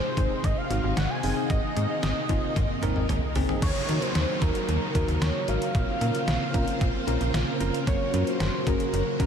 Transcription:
Already playing: C3 D#3 G#3 D#4 C5
0.17 G#1 C4 D#4 G#4, kick, closed hi-hat
0.44 G#1 D#5, kick, closed hi-hat
0.57 F5
0.70 G#1 C4 D#4 F#4, closed hi-hat
0.84 G#1
0.97 G#1 F#5, snare, closed hi-hat
1.10 G#5
1.23 F#1 C4 D#4 G#4, open hi-hat
1.37 C4 D#4 G#4
1.50 G#1 A#3 D#5, kick, closed hi-hat
1.76 G#2 C4 D#4 G#4, closed hi-hat
1.90 C4 D#4 G#4
2.03 G#1, snare, closed hi-hat
2.29 G#1 C4 D#4 F4, kick, closed hi-hat
2.56 G#1, kick, closed hi-hat, high tom
2.83 G#1 C4 D#4 A#4, closed hi-hat, mid tom
2.96 G#1, mid tom
3.09 G#1, closed hi-hat, mid tom
3.35 C#2 C4 D#4 G#4, floor tom, open hi-hat
3.49 C4 D#4 G#4, floor tom
3.62 D#2 C#3 F#3 A#3 D#4 C#5, kick, closed hi-hat, crash, downlifter
3.89 D#3 D#4 F#4 A#4, closed hi-hat
4.02 C5, closed hi-hat
4.15 D#2, snare, closed hi-hat
4.42 D#2 D#4 F#4 A#4, kick, closed hi-hat
4.55 closed hi-hat
4.68 D#2, closed hi-hat
4.95 D#2 D#4 F#4 A#4, kick, closed hi-hat
5.08 D#2, closed hi-hat
5.21 D#2 C#5, snare, closed hi-hat
5.48 G#1 D#4 F#4 A#4 F5, closed hi-hat
5.62 closed hi-hat
5.75 A#1 C4 F4, kick, closed hi-hat
6.01 A#2 C#4 F4 A#4, closed hi-hat
6.15 closed hi-hat
6.28 A#1, snare, closed hi-hat
6.54 A#1 C#4 F4 A#4, kick, closed hi-hat
6.68 closed hi-hat
6.81 A#1, kick, closed hi-hat
7.07 A#1 C#4 F4 A#4, closed hi-hat
7.21 A#1, closed hi-hat
7.34 A#1, snare, closed hi-hat
7.60 F1 C#4 F4 A#4, closed hi-hat
7.74 closed hi-hat
7.87 F#1 F#3 F#4 C#5, kick, closed hi-hat
8.14 F#2 C#4 F#4 A#4, closed hi-hat
8.27 C5, closed hi-hat
8.40 F#1, snare, closed hi-hat
8.67 F#1 C#4 F#4 G#4 A#4, kick, closed hi-hat
8.80 closed hi-hat
8.93 F#1, closed hi-hat
9.20 F#1 C#4 F#4 A#4, kick, closed hi-hat

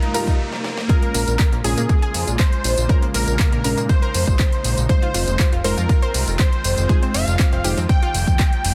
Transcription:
Already playing: C3 G3 A#3 D#4 F4 A#4, riser, swell
0.02 D#4, closed hi-hat
0.14 G3 D#4 F4 A#4, open hi-hat, tambourine
0.27 D#4, kick, closed hi-hat, tambourine
0.53 snare
0.64 snare
0.78 snare
0.89 C#3 G#3 A#3 C#4 F4 G#4 A#4, kick, closed hi-hat, tambourine
1.03 A#3, closed hi-hat
1.14 A#1 A#3, open hi-hat, tambourine
1.27 A#1, closed hi-hat, tambourine
1.39 A#3, kick, clap, closed hi-hat, tambourine
1.52 A#1 A#3, closed hi-hat
1.64 A#1 G#3 C#4 F4 G#4 A#4, open hi-hat, tambourine
1.77 A#2 A#3, closed hi-hat, tambourine
1.89 A#3, kick, closed hi-hat, tambourine
2.02 G#4, closed hi-hat
2.14 F2, open hi-hat, tambourine
2.27 A#1, closed hi-hat, tambourine
2.39 C5, kick, clap, closed hi-hat, tambourine
2.53 closed hi-hat
2.64 A#1, open hi-hat, tambourine
2.77 A#1, closed hi-hat, tambourine
2.89 G#3 C#4 D#4 F4 A#4, kick, closed hi-hat, tambourine
3.02 A#3, closed hi-hat
3.14 A#1 A#3 A#4, open hi-hat, tambourine
3.27 A#1, closed hi-hat, tambourine
3.39 A#3, kick, clap, closed hi-hat
3.52 A#1 A#3, closed hi-hat
3.64 A#1 G#3 C#4 F4 A#4, open hi-hat, tambourine
3.77 A#2 A#3, closed hi-hat, tambourine
3.89 A#3 C5, kick, closed hi-hat, tambourine
4.02 A#4, closed hi-hat
4.14 F2, open hi-hat, tambourine
4.27 A#1, kick, closed hi-hat, tambourine
4.39 kick, clap, closed hi-hat, tambourine
4.52 closed hi-hat
4.64 A#1, open hi-hat, tambourine
4.78 A#1, closed hi-hat, tambourine
4.89 D#3 G#3 C4 D#4 F4 C5, kick, closed hi-hat, tambourine
5.02 F4, closed hi-hat
5.14 F1 F4, open hi-hat, tambourine
5.27 F1, closed hi-hat, tambourine
5.39 F4, kick, clap, closed hi-hat, tambourine
5.52 F1 F4, closed hi-hat
5.64 F1 G#3 D#4 F4 A#4 C5, open hi-hat, tambourine
5.77 F2 F4, closed hi-hat, tambourine
5.89 F4, kick, closed hi-hat, tambourine
6.02 C5, closed hi-hat
6.14 C2, open hi-hat, tambourine
6.27 F1, closed hi-hat, tambourine
6.39 C5, kick, clap, closed hi-hat, tambourine
6.53 closed hi-hat
6.64 F1, open hi-hat, tambourine
6.77 F1, closed hi-hat, tambourine
6.89 G#3 A#3 D#4 F4 G#4 C5, kick, closed hi-hat, tambourine
7.03 C4, closed hi-hat
7.14 F1 C4 F5, open hi-hat, tambourine
7.27 F1, closed hi-hat, tambourine
7.39 C4, kick, clap, closed hi-hat, tambourine
7.52 F1 C4, closed hi-hat
7.64 F1 G#3 D#4 F4 G4 C5, open hi-hat, tambourine
7.77 F2 C4, closed hi-hat, tambourine
7.89 C4 G5, kick, closed hi-hat, tambourine
8.03 F4, closed hi-hat
8.14 F1, open hi-hat, tambourine
8.27 F2, kick, closed hi-hat, tambourine
8.39 kick, clap, closed hi-hat, tambourine
8.53 closed hi-hat
8.64 F1, open hi-hat, tambourine

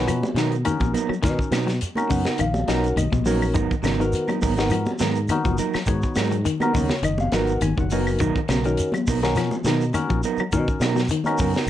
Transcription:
Already playing: B3 C#4 D#4 F#4 A#4 B4
0.06 B2 F3, closed hi-hat, high conga, claves, shekere
0.23 high conga, shekere
0.34 B2 D#3 F#3 B3 D#4 A#4, snare, closed hi-hat, shekere
0.52 closed hi-hat, shekere
0.65 D#3 C#4 D#4 F#4 A#4, closed hi-hat, high conga, claves, shekere
0.80 A#1, muted clean electric guitar stroke, kick, closed hi-hat, high conga, shekere
0.93 F#3 B3 D#4 A#4, closed hi-hat, shekere
1.09 F#3, muted fingered electric bass stroke, claves, shekere
1.23 B2 D#3 C#4 D#4 F#4 A#4, kick, snare, closed hi-hat, shekere
1.38 muted fingered electric bass stroke, kick, shekere
1.51 B2 F#3 B3 D#4, muted clean electric guitar stroke, snare, closed hi-hat, high conga, claves, shekere
1.67 F#3, snare, closed hi-hat, shekere
1.81 closed hi-hat, high conga, shekere
1.95 C#4 D#4 F#4 A#4, muted clean electric guitar stroke, closed hi-hat, high conga, claves, shekere
2.10 F#2 C#3 B3 D#4 F#5, muted clean electric guitar stroke, kick, open hi-hat, shekere
2.25 B3 D#4 A#4, snare, closed hi-hat, shekere
2.38 A#1 D#3 F5, closed hi-hat, high conga, claves, shekere
2.54 high conga, shekere
2.68 B1 F3 F#3 B3 C#4 D#4 F#4 A#4 F#5, snare, closed hi-hat, shekere
2.84 closed hi-hat, shekere
2.96 B1 D#3 D#5, closed hi-hat, high conga, claves, shekere
3.12 A#1 B2, kick, high conga, shekere
3.25 F#3 B3 C#4 D#4 F#4 A#4 C#5, open hi-hat, shekere
3.41 claves, shekere
3.54 G#1 D#3 F#3 B3 D#4 A#4, kick, closed hi-hat, high conga, shekere
3.71 kick, shekere
3.83 G#1 C#3 F#3 B3 D#4 A#4, snare, closed hi-hat, high conga, claves, shekere
4.00 D#3 B3 D#4 F#4 A#4, closed hi-hat, shekere
4.13 closed hi-hat, high conga, shekere
4.27 F#3 B3 D#4 A#4, closed hi-hat, high conga, claves, shekere
4.41 G#1 F#3 B3 D#4 A#4, kick, open hi-hat, shekere
4.56 D#3 B3 D#4 F#4 A#4, snare, closed hi-hat, shekere
4.70 G#2 F3, closed hi-hat, high conga, claves, shekere
4.86 high conga, shekere
4.99 G#2 D#3 F#3 B3 A#4, muted clean electric guitar stroke, snare, closed hi-hat, shekere
5.15 closed hi-hat, shekere
5.28 D#3 B3 D#4 F#4 A#4, closed hi-hat, high conga, claves, shekere
5.45 F#1 F3, kick, closed hi-hat, high conga, shekere
5.58 F#3 D#4 A#4, closed hi-hat, shekere
5.74 F#3, muted fingered electric bass stroke, snare, claves, shekere
5.86 G#2 D#3 B3 D#4 F#4 C#5, kick, closed hi-hat, high conga, shekere
6.02 muted fingered electric bass stroke, kick, shekere
6.15 G#2 F#3 D#4 A#4, snare, closed hi-hat, high conga, claves, shekere
6.31 F#3, closed hi-hat, shekere
6.45 D#3, closed hi-hat, high conga, shekere
6.60 B3 D#4 F#4 A#4, closed hi-hat, high conga, claves, shekere
6.74 D#2 C#3 F#3 B3 D#4 A#4 C#5, kick, open hi-hat, shekere
6.89 snare, closed hi-hat, shekere
7.02 F#1 D#3 D#5, closed hi-hat, high conga, claves, shekere
7.18 F5, high conga, shekere
7.32 G#1 F3 F#3 B3 D#4 F#4 A#4 F#5, snare, closed hi-hat, shekere
7.47 closed hi-hat, shekere
7.61 G#1 D#3 G#5, closed hi-hat, high conga, claves, shekere
7.77 F#1 D#3 F#5, kick, high conga, shekere
7.90 F#3 B3 D#4 F#4 A#4 G#5, open hi-hat, shekere
8.07 claves, shekere
8.19 B1 D#3 F#3 B3 D#4 A#4, kick, closed hi-hat, high conga, shekere
8.36 kick, shekere
8.48 B1 C#3 F#3 B3 A#4, muted clean electric guitar stroke, snare, closed hi-hat, high conga, claves, shekere
8.64 D#3 C#4 D#4 F#4 A#4, closed hi-hat, shekere
8.77 closed hi-hat, high conga, shekere
8.92 F#3, closed hi-hat, high conga, claves, shekere
9.07 B1 F#3 B3 D#4 A#4, kick, open hi-hat, high conga, shekere
9.23 D#3 B3 C#4 D#4 F#4 A#4, snare, closed hi-hat, shekere
9.35 B2 F3, snare, closed hi-hat, high conga, claves, shekere
9.51 high conga, shekere
9.64 B2 D#3 F#3 B3 D#4 A#4, snare, closed hi-hat, shekere
9.81 closed hi-hat, shekere
9.94 D#3 C#4 D#4 F#4 A#4, closed hi-hat, high conga, claves, shekere
10.10 A#1 F3, kick, closed hi-hat, shekere
10.23 F#3 B3 D#4 A#4, closed hi-hat, shekere
10.37 F#3, muted fingered electric bass stroke, claves, shekere
10.51 B2 D#3 C#4 D#4 F#4 A#4, kick, closed hi-hat, high conga, shekere
10.68 muted fingered electric bass stroke, kick, shekere
10.80 B2 F#3 B3 D#4 A#4, snare, closed hi-hat, high conga, claves, shekere
10.96 F#3, snare, closed hi-hat, shekere
11.08 D#3, closed hi-hat, high conga, shekere
11.24 B3 C#4 D#4 F#4 A#4, closed hi-hat, high conga, claves, shekere
11.38 F#2 C#3 F#3 B3 D#4 A#4, kick, open hi-hat, shekere
11.53 B3 D#4 A#4, snare, closed hi-hat, shekere
11.67 A#1

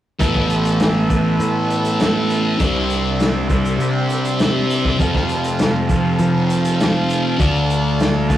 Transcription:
0.19 A1 A2 E3 A3 B3 A4 E5, kick, closed hi-hat
0.35 kick
0.50 closed hi-hat
0.65 closed hi-hat
0.80 snare, closed hi-hat
1.09 A2 E3 A3, kick, closed hi-hat
1.39 A2, closed hi-hat
1.70 closed hi-hat
1.85 closed hi-hat
2.00 snare, closed hi-hat
2.30 closed hi-hat
2.58 C2 C3 G3 C4 D4 C5, kick, closed hi-hat
2.90 closed hi-hat
3.20 snare, closed hi-hat
3.48 C3 G3 C4, kick, closed hi-hat
3.65 closed hi-hat
3.79 C3, closed hi-hat
4.09 closed hi-hat
4.25 closed hi-hat
4.39 snare, closed hi-hat
4.70 closed hi-hat
4.85 kick
4.98 F2 C3 F3 C4 A4 F5, kick, closed hi-hat
5.15 kick, snare
5.29 closed hi-hat
5.44 closed hi-hat
5.59 snare, closed hi-hat
5.89 F2 C3 F3, kick, closed hi-hat
6.18 F3, closed hi-hat
6.50 closed hi-hat
6.65 closed hi-hat
6.80 snare, closed hi-hat
7.10 closed hi-hat
7.38 D2 D3 A3 D4, kick, closed hi-hat
7.70 closed hi-hat
8.00 snare, closed hi-hat
8.29 D3 A3 D4, kick, closed hi-hat

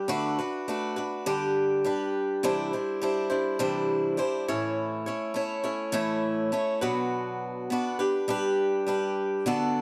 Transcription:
0.08 D3 A3 D4 F#4 B4
0.39 D4 F#4 B4
0.68 A3 D4 F#4 B4
0.96 D4 F#4 B4
1.26 D3 G3 D4 G4 B4
1.84 G3 D4 G4 B4
2.43 C3 E3 G3 D4 E4 C5
2.73 G3 D4 E4 C5
3.02 G3 D4 E4 C5
3.30 G3 D4 E4 C5
3.59 C3 E3 G3 D4 E4 C5
4.17 G3 D4 E4 C5
4.48 A2 E3 A3 C#4 E4 C#5
5.06 A3 C#4 E4 C#5
5.34 A3 C#4 E4 C#5
5.64 A3 C#4 E4 C#5
5.92 A2 E3 A3 C#4 E4 C#5
6.52 A3 C#4 E4 C#5
6.81 B2 F#3 B3 D4 F#4 B4
7.70 B3 D4 F#4 B4
7.99 D4 G4 B4
8.28 G3 D4 G4 B4
8.87 G3 D4 G4 B4
9.46 D3 B3 D4 F#4 A4

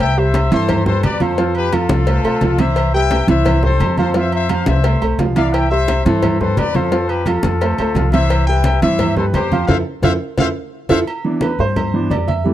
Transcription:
0.00 C2 E5 G5, high conga, low agogo
0.17 G3 G4 C5 E5, high conga
0.34 cowbell, high conga, low timbale, low agogo
0.51 G2 E3 E4 A4 C5 E5, cowbell
0.69 cowbell, high conga, low conga, low agogo
0.86 G3 G4 A4 B4 C5, high conga, low conga
1.03 F2 B4 D5, cowbell, high conga, low timbale, low agogo
1.20 F3 F4 A4 C5 F5, high conga, low agogo
1.37 F3 F4 F5, cowbell, high conga
1.55 G4 B4, high conga, low agogo
1.73 F3 F4 A4 F5, cowbell, high conga, low timbale, low agogo
1.89 C2, cowbell, high conga
2.07 A3 A4 C5, cowbell, low agogo
2.24 B1 A3 A4 C5, high conga, low agogo
2.41 C2 F3 F4 F5, cowbell, high conga, low timbale
2.58 E3 E4 C5 E5, cowbell, high conga, low agogo
2.76 cowbell, high conga, low agogo
2.93 G3 G4 B4 E5 G5, high conga
3.11 cowbell, high conga, low timbale, low agogo
3.28 C2 E3 E4 C5 E5, cowbell
3.45 cowbell, high conga, low conga, low agogo
3.63 G3 G4 A4 C5, high conga, low conga
3.80 F2, cowbell, high conga, low timbale, low agogo
3.97 F3 F4 A4 C5 F5, high conga, low agogo
4.14 F3 F4 C5 E5 F5, cowbell, high conga
4.32 C5 E5, high conga, low agogo
4.49 F3 F4 C5 F5, cowbell, high conga, low timbale, low agogo
4.66 C2 C5 E5, cowbell, high conga
4.84 A3 A4 C5, cowbell, high conga, low agogo
5.01 B1 A3 A4 C5, high conga, low agogo
5.19 C2 F3 F4 F5, cowbell, high conga, low timbale
5.36 E3 E4 D5 E5 F5, cowbell, high conga, low agogo
5.53 E5 G5, cowbell, high conga, low agogo
5.70 G3 G4 C5 E5, high conga
5.88 cowbell, high conga, low timbale, low agogo
6.05 G2 E3 E4 A4 C5 E5, cowbell
6.23 cowbell, high conga, low conga, low agogo
6.40 G3 G4 A4 B4 C5, high conga, low conga
6.57 F2 B4 D5, cowbell, high conga, low timbale, low agogo
6.74 F3 F4 A4 C5 F5, high conga, low agogo
6.92 F3 F4 F5, cowbell, high conga
7.08 G4 B4, high conga, low agogo
7.26 F3 F4 A4 F5, cowbell, high conga, low timbale, low agogo
7.43 F2, cowbell, high conga
7.61 A3 A4 C5, cowbell, high conga, low agogo
7.78 D2 A3 A4 C5, high conga, low agogo
7.95 C2 F3 F4 F5, cowbell, high conga, low timbale
8.12 E3 E4 C5 E5, cowbell, high conga, low agogo
8.29 cowbell, high conga, low agogo
8.47 G3 G4 B4 E5 G5, high conga
8.64 cowbell, high conga, low timbale, low agogo
8.82 G2 E3 E4 C5 E5, cowbell
8.99 cowbell, high conga, low conga, low agogo
9.17 G3 G4 A4 B4 C5, high conga, low conga
9.33 F2 G4 C5, cowbell, high conga, low timbale, low agogo
9.52 F3 F4 F5, high conga, low agogo
9.68 F2 E4 F4 A4 C5 E5 F5, cowbell, high conga, high timbale
10.02 F2 E4 F4 A4 C5 E5 F5, cowbell, high conga, high timbale
10.38 F2 E4 F4 A4 C5 E5 F5, cowbell, high conga, high timbale
10.89 F2 E4 F4 A4 C5 E5 F5, cowbell, high conga, high timbale
11.07 high conga, low agogo
11.25 E3 B3 D4, high conga
11.41 B4, high conga, low timbale, low agogo
11.59 G2 C5
11.76 high conga, low conga, low agogo
11.94 E3 B3 D4, high conga
12.10 F2 D5, high conga, low timbale, low agogo
12.28 E5, high conga, low agogo
12.44 E3 G3 A3, high conga

